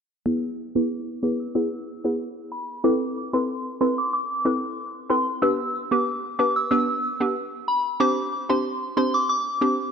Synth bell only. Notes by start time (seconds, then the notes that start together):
0.26 E6
0.76 D6
1.23 D6
1.40 E6
1.55 E6
2.52 B5
2.84 D6
3.33 C6
3.81 C6
3.98 D6
4.13 D6
5.10 C6
5.42 E6
5.92 D6
6.39 D6
6.56 E6
6.71 E6
7.68 B5
8.00 D6
8.50 C6
8.97 C6
9.14 D6
9.29 D6